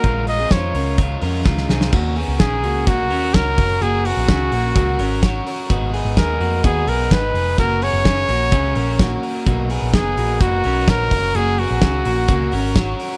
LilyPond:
<<
  \new Staff \with { instrumentName = "Trumpet" } { \time 4/4 \key bes \minor \tempo 4 = 127 bes'8 ees''8 des''4 r2 | \key ges \major r4 aes'4 ges'4 bes'4 | aes'8 ges'2. r8 | r4 bes'4 aes'8 bes'8 ces''4 |
bes'8 des''2. r8 | r4 aes'4 fis'4 ais'4 | aes'8 ges'2. r8 | }
  \new Staff \with { instrumentName = "Clean electric guitar" } { \time 4/4 \key bes \minor <aes f'>8. <c' aes'>16 <f' c''>8 <des' bes'>8 <f' des''>8 <des' bes'>8 <aes f'>8 <c' aes'>8 | \key ges \major <bes ges'>8 <ces' aes'>8 <des' aes'>8 <bes ges'>8 <bes ges'>8 <des' bes'>8 <ges' des''>4 | <bes ges'>8 <ces' aes'>8 <des' aes'>8 <bes ges'>8 <bes ges'>8 <des' bes'>8 <ges' des''>4 | <ces' ges'>8 <ces' aes'>8 <ces' aes'>8 <bes ges'>8 <ces' ges'>8 <ces' aes'>8 <ees' ces''>4 |
<bes ges'>8 <ces' aes'>8 <des' aes'>8 <bes ges'>8 <des' aes'>8 <des' bes'>8 <bes ges'>4 | <ais fis'>8 <b aes'>8 <b aes'>8 <ais fis'>8 <ais fis'>8 <des' ais'>8 <fis' des''>4 | <bes ges'>8 <ces' aes'>8 <des' aes'>8 <bes ges'>8 <bes ges'>8 <des' bes'>8 <ges' des''>4 | }
  \new Staff \with { instrumentName = "Overdriven electric guitar" } { \time 4/4 \key bes \minor <bes, f aes des' f' bes'>8 <aes des' f' bes'>8 <aes des' f' bes'>8 <aes des' f' bes'>8 <bes, f aes des' f' bes'>8 <aes des' f' bes'>8 <aes des' f' bes'>8 <aes des' f' bes'>8 | \key ges \major <ees ges des' ges' bes'>8 <des' ges' bes'>8 <ees ges des' ges' bes'>8 <des' ges' bes'>8 <ges des' ges' bes'>8 <des' ges' bes'>8 <ees ges des' ges' bes'>8 <des' ges' bes'>8 | <ges des' ges' bes'>8 <des' ges' bes'>8 <ges des' ges' bes'>8 <des' ges' bes'>8 <ges des' ges' bes'>8 <des' ges' bes'>8 <ges des' ges' bes'>8 <des' ges' bes'>8 | <aes, ees aes ces' ees' aes'>8 <aes ces' ees' aes'>8 <aes, ees aes ces' ees' aes'>8 <aes ces' ees' aes'>8 <aes ces' ees' aes'>8 <aes ces' ees' aes'>8 <aes, ees aes ces' ees' aes'>8 <aes ces' ees' aes'>8 |
<ges des' ges' bes'>8 <des' ges' bes'>8 <ges des' ges' bes'>8 <des' ges' bes'>8 <ges des' ges' bes'>8 <des' ges' bes'>8 <ges des' ges' bes'>8 <des' ges' bes'>8 | <b, dis fis b dis' ais'>8 <fis b dis' ais'>8 <b, dis fis b dis' ais'>8 <fis b dis' ais'>8 <fis b dis' ais'>8 <fis b dis' ais'>8 <b, dis fis b dis' ais'>8 <des' ges' bes'>8 | <ges des' ges' bes'>8 <des' ges' bes'>8 <ges des' ges' bes'>8 <des' ges' bes'>8 <ges des' ges' bes'>8 <des' ges' bes'>8 <ges des' ges' bes'>8 <des' ges' bes'>8 | }
  \new Staff \with { instrumentName = "Picked electric bass" } { \clef bass \time 4/4 \key bes \minor bes,,4 f,8 des,4 f,8 des,8 c,8 | \key ges \major ees,8. des,16 bes,,8 des,8 bes,,8 ees,8 des,8 ges,,8 | ges,,8. bes,,16 des,8 bes,,8 des,8 aes,,4 r8 | aes,,8. aes,,16 ees,8 f,8 ees,8 ces,8 aes,,8 f,,8 |
ges,,8. ges,,8. bes,,8 des,8 bes,,4 r8 | b,,8. ais,,16 fis,,8 ais,,8 fis,,8 b,,8 ais,,8 ges,,8 | ges,,8. bes,,16 des,8 bes,,8 des,8 aes,,4 r8 | }
  \new DrumStaff \with { instrumentName = "Drums" } \drummode { \time 4/4 <hh bd>8 hho8 <hh bd sn>8 hho8 <hh bd>8 hho8 <bd sn>16 sn16 sn16 sn16 | <cymc bd>8 hho8 <hhp bd cymr sn>8 hho8 <hhp bd cymr>8 hho8 <hhp bd cymr sn>8 <hho bd>8 | <hhp cymr>8 hho8 <hhp bd cymr sn>8 hho8 <hhp bd cymr>8 hho8 <hhp bd cymr sn>8 hho8 | <hhp bd cymr>8 hho8 <hhp bd cymr sn>8 hho8 <hhp bd cymr>8 hho8 <hhp bd cymr sn>8 hho8 |
<hhp bd cymr>8 hho8 <hhp bd cymr sn>8 hho8 <hhp bd cymr>8 hho8 <hhp bd cymr sn>8 hho8 | <hhp bd cymr>8 hho8 <hhp bd cymr sn>8 hho8 <hhp bd cymr>8 hho8 <hhp bd cymr sn>8 <hho bd>8 | <hhp cymr>8 hho8 <hhp bd cymr sn>8 hho8 <hhp bd cymr>8 hho8 <hhp bd cymr sn>8 hho8 | }
>>